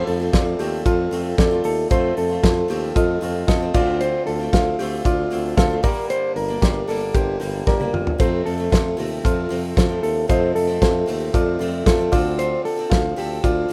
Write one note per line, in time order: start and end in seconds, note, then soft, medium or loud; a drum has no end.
0.00 0.20 F3 medium
0.00 0.21 A3 medium
0.00 0.20 C4 medium
0.00 0.18 F4 medium
0.00 0.22 F4 medium
0.00 0.22 A4 medium
0.00 0.22 C5 medium
0.07 0.28 F2 loud
0.07 0.57 A4 medium
0.07 open hi-hat medium
0.20 0.59 A3 soft
0.20 0.60 C4 medium
0.20 0.59 F4 medium
0.33 0.55 F2 loud
0.33 0.74 F4 medium
0.33 0.74 A4 medium
0.33 0.75 D5 medium
0.33 kick loud
0.33 snare loud
0.33 hi-hat pedal medium
0.33 ride medium
0.59 0.81 D#2 medium
0.59 1.11 F3 medium
0.59 1.12 A3 medium
0.59 1.13 C4 medium
0.59 1.14 F4 medium
0.59 0.85 G4 medium
0.59 open hi-hat medium
0.86 1.07 F2 loud
0.86 1.27 F4 medium
0.86 1.35 F4 medium
0.86 1.27 A4 medium
0.86 1.27 C5 medium
0.86 kick loud
0.86 hi-hat pedal medium
0.86 ride medium
1.11 1.33 F2 medium
1.11 1.51 F3 medium
1.11 1.52 A3 medium
1.11 1.51 C4 medium
1.11 1.50 F4 medium
1.11 open hi-hat medium
1.38 1.60 F2 medium
1.38 1.79 F4 medium
1.38 1.64 A4 medium
1.38 1.80 A4 medium
1.38 1.80 D5 medium
1.38 kick loud
1.38 snare loud
1.38 hi-hat pedal medium
1.38 ride soft
1.51 1.90 A3 soft
1.51 1.91 C4 medium
1.51 1.91 F4 medium
1.64 1.86 D#2 medium
1.64 1.91 A4 medium
1.64 open hi-hat medium
1.90 2.12 F2 loud
1.90 2.30 F3 medium
1.90 2.30 A3 medium
1.90 2.30 C4 medium
1.90 2.32 F4 medium
1.90 2.28 F4 medium
1.90 2.32 A4 medium
1.90 2.17 C5 loud
1.90 2.32 C5 medium
1.90 kick loud
1.90 hi-hat pedal medium
1.90 ride medium
2.17 2.38 F2 loud
2.17 2.67 A4 medium
2.17 open hi-hat medium
2.29 2.68 A3 medium
2.29 2.70 C4 medium
2.29 2.69 F4 medium
2.43 2.65 F2 loud
2.43 2.84 F4 medium
2.43 2.84 A4 medium
2.43 2.85 C5 medium
2.43 kick loud
2.43 snare loud
2.43 hi-hat pedal medium
2.43 ride medium
2.68 2.91 D#2 medium
2.68 3.20 F3 medium
2.68 3.22 A3 medium
2.68 3.23 C4 medium
2.68 3.24 F4 medium
2.68 2.96 G4 medium
2.68 open hi-hat medium
2.95 3.17 F2 loud
2.95 3.36 F4 medium
2.95 3.21 F4 medium
2.95 3.37 A4 medium
2.95 3.37 D#5 medium
2.95 kick loud
2.95 hi-hat pedal medium
2.95 ride medium
3.21 3.44 F2 loud
3.21 3.61 F3 medium
3.21 3.61 A3 medium
3.21 3.61 C4 medium
3.21 3.48 F4 medium
3.21 3.59 F4 medium
3.21 open hi-hat medium
3.47 3.70 F2 medium
3.47 3.73 F4 medium
3.47 3.74 A4 medium
3.47 3.75 D#5 medium
3.47 kick loud
3.47 snare loud
3.47 hi-hat pedal medium
3.47 ride soft
3.61 3.74 A3 medium
3.61 3.74 C4 medium
3.61 3.74 F4 medium
3.74 4.17 D2 loud
3.74 4.44 D3 medium
3.74 4.40 A3 medium
3.74 4.40 C4 medium
3.74 4.37 F4 medium
3.74 4.01 F4 medium
3.74 4.38 F4 medium
3.74 4.37 C5 medium
3.74 4.38 D5 loud
3.74 kick loud
3.74 crash medium
4.01 4.26 C5 loud
4.01 hi-hat pedal medium
4.01 ride medium
4.27 4.48 D2 medium
4.27 4.76 A4 medium
4.27 open hi-hat medium
4.39 4.79 A3 soft
4.39 4.80 C4 medium
4.39 4.79 F4 medium
4.53 4.74 D2 medium
4.53 4.94 F4 medium
4.53 4.94 C5 medium
4.53 4.94 F5 loud
4.53 kick loud
4.53 snare loud
4.53 hi-hat pedal medium
4.53 ride medium
4.79 5.01 D2 medium
4.79 5.30 D3 medium
4.79 5.30 A3 medium
4.79 5.31 C4 medium
4.79 5.33 F4 medium
4.79 5.05 G4 medium
4.79 open hi-hat medium
5.05 5.27 D2 loud
5.05 5.46 F4 medium
5.05 5.55 F4 medium
5.05 5.46 C5 medium
5.05 5.46 D5 medium
5.05 kick loud
5.05 hi-hat pedal medium
5.05 ride medium
5.30 5.53 D2 loud
5.30 5.70 D3 medium
5.30 5.71 A3 medium
5.30 5.70 C4 medium
5.30 5.68 F4 medium
5.30 open hi-hat medium
5.57 5.79 D2 loud
5.57 5.84 F4 medium
5.57 5.83 A4 medium
5.57 5.84 C5 medium
5.57 5.84 F5 medium
5.57 kick loud
5.57 snare loud
5.57 hi-hat pedal medium
5.57 ride soft
5.70 5.84 A3 medium
5.70 5.84 C4 medium
5.70 5.83 F4 medium
5.83 6.49 G2 medium
5.83 6.49 D3 medium
5.83 6.50 G3 medium
5.83 6.49 A#3 medium
5.83 6.47 D4 medium
5.83 6.46 G4 medium
5.83 6.47 A#4 medium
5.83 6.10 A#4 medium
5.83 6.47 D5 medium
5.83 kick loud
5.83 open hi-hat medium
6.10 6.36 C5 loud
6.10 hi-hat pedal medium
6.10 ride medium
6.35 6.57 G1 loud
6.35 6.86 A#4 medium
6.35 open hi-hat medium
6.48 6.88 G3 soft
6.48 6.89 A#3 medium
6.48 6.88 D4 medium
6.61 6.84 G1 loud
6.61 7.03 G4 medium
6.61 7.03 A#4 medium
6.61 7.03 D5 medium
6.61 kick loud
6.61 snare loud
6.61 hi-hat pedal medium
6.61 ride medium
6.88 7.10 G1 medium
6.88 7.38 D3 medium
6.88 7.40 G3 medium
6.88 7.41 A#3 medium
6.88 7.42 D4 medium
6.88 7.15 A4 medium
6.88 open hi-hat medium
7.14 7.36 G1 loud
7.14 7.55 G4 medium
7.14 7.40 G4 medium
7.14 7.56 A#4 medium
7.14 7.56 C5 medium
7.14 kick loud
7.14 hi-hat pedal medium
7.14 ride medium
7.40 7.62 G1 loud
7.40 7.80 D3 medium
7.40 7.80 G3 medium
7.40 7.80 A#3 medium
7.40 7.78 D4 medium
7.40 7.67 G4 medium
7.40 open hi-hat medium
7.67 7.89 G1 medium
7.67 8.08 G4 medium
7.67 7.93 A#4 medium
7.67 8.08 A#4 medium
7.67 8.09 D5 medium
7.67 kick loud
7.67 snare medium
7.80 8.20 G3 soft
7.80 8.20 A#3 medium
7.80 8.19 D4 medium
7.80 high tom medium
7.93 8.15 G1 medium
7.93 8.20 F4 medium
7.93 mid tom medium
8.07 floor tom medium
8.18 8.41 F2 loud
8.18 8.58 C3 medium
8.18 8.59 F3 medium
8.18 8.58 A3 medium
8.18 8.57 C4 medium
8.18 8.60 F4 medium
8.18 8.61 A4 medium
8.18 8.45 C5 loud
8.18 8.61 C5 medium
8.18 kick loud
8.18 hi-hat pedal medium
8.18 ride medium
8.46 8.67 F2 loud
8.46 8.98 A4 medium
8.46 open hi-hat medium
8.58 8.97 F3 soft
8.58 8.98 A3 medium
8.58 8.98 C4 medium
8.72 8.94 F2 loud
8.72 9.13 F4 medium
8.72 9.13 A4 medium
8.72 9.13 C5 loud
8.72 kick loud
8.72 snare loud
8.72 hi-hat pedal medium
8.72 ride medium
8.97 9.20 D#2 medium
8.97 9.48 C3 medium
8.97 9.50 F3 medium
8.97 9.51 A3 medium
8.97 9.52 C4 medium
8.97 9.24 G4 medium
8.97 open hi-hat medium
9.24 9.46 F2 loud
9.24 9.74 F4 medium
9.24 9.65 F4 medium
9.24 9.65 A4 medium
9.24 9.66 C5 medium
9.24 kick loud
9.24 hi-hat pedal medium
9.24 ride medium
9.49 9.72 F2 medium
9.49 9.89 C3 medium
9.49 9.90 F3 medium
9.49 9.89 A3 medium
9.49 9.87 C4 medium
9.49 open hi-hat medium
9.77 9.98 F2 medium
9.77 10.18 F4 medium
9.77 10.02 A4 medium
9.77 10.18 A4 medium
9.77 10.18 C5 medium
9.77 kick loud
9.77 snare loud
9.77 hi-hat pedal medium
9.77 ride soft
9.89 10.28 F3 medium
9.89 10.29 A3 medium
9.89 10.29 C4 medium
10.03 10.25 D#2 medium
10.03 10.29 A4 medium
10.03 open hi-hat medium
10.28 10.51 F2 loud
10.28 10.68 C3 medium
10.28 10.69 F3 medium
10.28 10.68 A3 medium
10.28 10.66 C4 medium
10.28 10.70 F4 medium
10.28 10.70 A4 medium
10.28 10.55 C5 loud
10.28 10.71 D#5 medium
10.28 kick loud
10.28 hi-hat pedal medium
10.28 ride medium
10.55 10.77 F2 loud
10.55 11.08 A4 medium
10.55 open hi-hat medium
10.67 11.06 F3 soft
10.67 11.07 A3 medium
10.67 11.07 C4 medium
10.82 11.03 F2 loud
10.82 11.22 F4 medium
10.82 11.23 A4 medium
10.82 11.23 C5 medium
10.82 kick loud
10.82 snare loud
10.82 hi-hat pedal medium
10.82 ride medium
11.06 11.29 D#2 medium
11.06 11.58 C3 medium
11.06 11.60 F3 medium
11.06 11.61 A3 medium
11.06 11.62 C4 medium
11.06 11.34 G4 medium
11.06 open hi-hat medium
11.34 11.56 F2 loud
11.34 11.75 F4 medium
11.34 11.59 F4 medium
11.34 11.75 A4 medium
11.34 11.75 D5 medium
11.34 kick loud
11.34 hi-hat pedal medium
11.34 ride medium
11.59 11.82 F2 loud
11.59 11.99 C3 medium
11.59 12.00 F3 medium
11.59 12.00 A3 medium
11.59 11.97 C4 medium
11.59 11.87 F4 medium
11.59 open hi-hat medium
11.86 12.08 F2 medium
11.86 12.11 F4 medium
11.86 12.13 A4 medium
11.86 12.11 C5 medium
11.86 kick loud
11.86 snare loud
11.86 hi-hat pedal medium
11.86 ride soft
11.99 12.12 F3 medium
11.99 12.13 A3 medium
11.99 12.12 C4 medium
12.12 12.56 D2 loud
12.12 12.84 D3 medium
12.12 12.78 F3 medium
12.12 12.79 C4 medium
12.12 12.79 D4 medium
12.12 12.75 F4 medium
12.12 12.39 F4 medium
12.12 12.76 A4 medium
12.12 12.75 C5 medium
12.12 12.75 D5 loud
12.12 kick loud
12.12 open hi-hat medium
12.39 12.65 C5 loud
12.39 hi-hat pedal medium
12.39 ride medium
12.65 13.14 A4 medium
12.65 open hi-hat medium
12.77 13.16 C4 medium
12.77 13.17 D4 medium
12.77 13.17 A4 medium
12.90 13.13 D2 loud
12.90 13.31 F4 medium
12.90 13.32 C5 medium
12.90 13.32 F5 loud
12.90 kick loud
12.90 snare loud
12.90 hi-hat pedal medium
12.90 ride medium
13.16 13.39 D2 medium
13.16 13.67 F3 medium
13.16 13.69 C4 medium
13.16 13.70 D4 medium
13.16 13.44 G4 medium
13.16 13.71 A4 medium
13.16 open hi-hat medium
13.44 13.65 D2 loud
13.44 13.73 F4 medium
13.44 13.73 C5 medium
13.44 13.73 D5 medium
13.44 kick loud
13.44 hi-hat pedal medium
13.44 ride medium
13.69 13.73 D2 loud
13.69 13.73 F3 medium